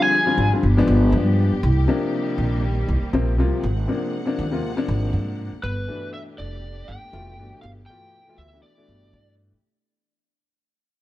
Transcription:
0.00 0.16 D3 medium
0.00 0.60 F3 medium
0.00 0.16 G3 medium
0.00 0.16 C4 medium
0.00 0.62 C4 medium
0.00 1.59 D4 medium
0.00 0.16 F4 medium
0.00 0.62 G#4 medium
0.00 0.52 G#5 medium
0.26 0.44 D3 medium
0.26 0.44 G3 medium
0.26 0.45 C4 medium
0.26 0.45 F4 medium
0.38 0.50 G#1 medium
0.52 0.64 D3 medium
0.52 0.64 G3 medium
0.52 0.64 C4 medium
0.52 0.64 F4 medium
0.61 0.86 G1 medium
0.61 1.62 F3 medium
0.61 1.61 B3 medium
0.61 3.59 G4 medium
0.77 1.51 F3 medium
0.77 1.51 G#3 medium
0.77 1.51 B3 medium
0.77 1.51 D4 loud
0.88 1.14 G1 medium
1.12 1.48 G2 medium
1.52 muted upright bass stroke soft
1.63 1.86 C2 loud
1.63 3.62 D#3 medium
1.63 3.62 G3 medium
1.63 3.62 A#3 medium
1.63 5.60 C4 medium
1.88 2.62 C3 medium
1.88 2.62 F3 medium
1.88 2.63 A#3 medium
1.88 2.62 D4 loud
2.38 2.84 A#1 medium
2.88 3.01 C2 medium
3.02 muted upright bass stroke soft
3.13 3.39 A#1 medium
3.13 3.32 C3 medium
3.13 3.32 F3 medium
3.13 3.33 A#3 medium
3.13 3.33 C4 medium
3.38 3.51 C2 medium
3.38 3.63 C3 medium
3.38 3.63 F3 medium
3.38 3.64 A#3 medium
3.38 3.64 F4 medium
3.63 3.86 G#1 medium
3.63 5.61 G#3 medium
3.63 5.61 A#3 medium
3.63 5.61 F#5 medium
3.88 4.16 C3 medium
3.88 4.16 F3 medium
3.88 4.16 A#3 medium
3.88 4.17 D4 medium
4.26 4.44 C3 medium
4.26 4.44 F3 medium
4.26 4.45 A#3 medium
4.26 4.45 D4 medium
4.39 4.61 D#2 medium
4.51 4.69 C3 medium
4.51 4.70 F3 medium
4.51 4.70 A#3 medium
4.51 4.70 F4 medium
4.77 5.51 C3 loud
4.77 5.50 F3 medium
4.77 5.51 A#3 medium
4.77 5.51 D4 loud
4.88 5.14 G#1 medium
5.13 5.48 G#2 medium
5.52 muted upright bass stroke soft
5.63 5.86 G1 loud
5.63 9.60 A3 medium
5.63 9.60 B3 medium
5.63 7.62 D4 medium
5.63 9.60 G4 medium
5.63 6.10 B4 medium
5.88 6.62 B2 medium
5.88 6.62 E3 medium
5.88 6.62 A3 medium
5.88 6.62 D4 medium
6.14 6.20 E5 medium
6.38 6.85 F1 medium
6.38 6.90 D5 medium
6.88 7.01 G1 medium
6.88 7.61 G5 medium
7.02 muted upright bass stroke soft
7.12 7.38 F1 medium
7.12 7.32 B2 medium
7.12 7.32 E3 medium
7.12 7.32 A3 medium
7.12 7.32 F4 medium
7.38 7.51 G1 medium
7.38 7.76 B2 medium
7.38 7.76 E3 medium
7.38 7.76 A3 medium
7.38 7.77 D4 medium
7.62 7.86 G1 medium
7.62 9.62 E4 medium
7.62 7.69 F5 medium
7.86 8.16 B2 medium
7.86 8.16 E3 medium
7.86 8.17 A3 medium
7.86 8.39 G5 medium
7.90 8.17 F4 medium
8.27 8.45 B2 medium
8.27 8.45 E3 medium
8.27 8.46 A3 medium
8.27 8.46 F4 medium
8.38 8.61 D2 medium
8.38 8.61 E5 medium
8.53 8.70 B2 medium
8.53 8.70 E3 medium
8.53 8.71 A3 medium
8.53 8.71 D4 medium
8.63 9.34 D5 medium
8.77 9.51 B2 medium
8.77 9.51 E3 medium
8.77 9.51 A3 medium
8.77 9.52 D4 medium
8.89 9.15 G1 medium
9.13 9.48 G2 medium
9.52 muted upright bass stroke soft

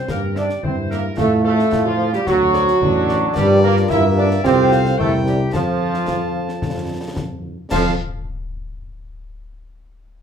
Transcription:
0.08 0.49 G2 medium
0.08 0.22 A#3 loud
0.08 0.62 G4 medium
0.08 0.34 A#4 loud
0.08 concert bass drum medium
0.08 snare medium
0.35 0.49 D4 loud
0.35 0.45 G4 medium
0.35 0.45 C5 medium
0.35 0.63 D5 loud
0.35 0.45 E5 medium
0.35 snare medium
0.50 snare medium
0.63 1.08 G2 medium
0.63 0.76 C4 loud
0.63 1.13 E4 medium
0.63 0.88 C5 medium
0.63 concert bass drum medium
0.90 1.04 A#3 loud
0.90 1.00 G4 medium
0.90 1.16 A#4 loud
0.90 1.00 C5 medium
0.90 1.00 E5 medium
0.90 snare medium
1.17 1.63 A2 loud
1.17 1.43 A3 loud
1.17 1.68 F4 loud
1.17 1.30 A4 loud
1.17 concert bass drum medium
1.17 snare medium
1.17 crash soft
1.44 1.83 A3 loud
1.44 1.54 F4 medium
1.44 1.54 A4 medium
1.44 1.83 A4 loud
1.44 1.54 C5 medium
1.44 1.54 F5 medium
1.59 snare medium
1.72 2.17 A2 loud
1.72 2.28 F4 loud
1.72 concert bass drum medium
1.72 snare medium
1.85 2.13 F3 loud
1.85 2.11 F4 loud
1.99 2.09 F4 medium
1.99 2.09 A4 medium
1.99 2.09 C5 medium
1.99 2.09 F5 medium
2.13 2.19 G3 loud
2.13 2.26 G4 loud
2.13 snare medium
2.26 2.72 D2 loud
2.26 3.31 F#3 loud
2.26 2.80 F#4 loud
2.26 3.36 F#4 loud
2.26 concert bass drum loud
2.26 snare medium
2.53 2.64 F#4 medium
2.53 2.64 A4 loud
2.53 2.64 C5 medium
2.53 2.63 D5 medium
2.53 snare medium
2.68 snare medium
2.81 3.26 A1 loud
2.81 3.86 D4 loud
2.81 concert bass drum loud
3.08 3.19 F#4 loud
3.08 3.18 A4 medium
3.08 3.18 C5 medium
3.08 3.18 D5 medium
3.08 snare medium
3.34 3.84 G2 loud
3.34 3.62 G3 loud
3.34 4.40 F4 loud
3.34 4.40 G4 loud
3.34 3.48 G4 loud
3.34 4.40 A#4 loud
3.34 3.91 D5 loud
3.34 concert bass drum medium
3.34 snare loud
3.34 crash soft
3.62 3.74 A#3 loud
3.62 3.76 A#4 loud
3.77 snare medium
3.89 4.38 G2 loud
3.89 4.41 A#3 loud
3.89 4.02 E4 loud
3.89 4.46 E5 loud
3.89 4.03 E5 loud
3.89 concert bass drum medium
3.89 snare medium
4.16 4.29 D4 loud
4.16 4.43 D5 loud
4.31 snare medium
4.43 4.93 C2 loud
4.43 4.95 C4 loud
4.43 4.95 F4 loud
4.43 4.74 G4 loud
4.43 4.99 A4 loud
4.43 4.98 C5 loud
4.43 5.00 C5 loud
4.43 5.00 F5 loud
4.43 concert bass drum medium
4.43 snare medium
4.72 4.98 F4 loud
4.72 snare medium
4.85 snare medium
4.98 5.47 C2 loud
4.98 5.11 A3 loud
4.98 5.50 E4 loud
4.98 5.32 E4 loud
4.98 5.12 A4 loud
4.98 5.53 A#4 loud
4.98 5.50 C5 loud
4.98 5.52 G5 loud
4.98 concert bass drum medium
5.25 5.38 G3 medium
5.25 5.52 G4 medium
5.25 snare medium
5.53 6.02 F2 medium
5.53 7.13 F3 loud
5.53 7.40 F4 medium
5.53 7.13 F4 loud
5.53 7.45 F4 medium
5.53 7.40 A4 medium
5.53 7.40 C5 medium
5.53 7.40 A5 medium
5.53 concert bass drum medium
5.53 snare medium
5.53 crash soft
5.94 snare medium
6.08 6.56 F2 medium
6.08 concert bass drum medium
6.08 snare medium
6.49 snare medium
6.62 7.11 F2 medium
6.62 concert bass drum medium
6.62 snare medium
7.16 7.57 F2 medium
7.16 concert bass drum medium
7.16 snare medium
7.71 7.95 F2 loud
7.71 7.94 F3 loud
7.71 7.94 F4 loud
7.71 7.94 A4 loud
7.71 7.94 C5 loud
7.71 7.94 F5 loud
7.71 7.94 A5 loud
7.71 concert bass drum loud
7.71 snare loud
7.71 crash medium

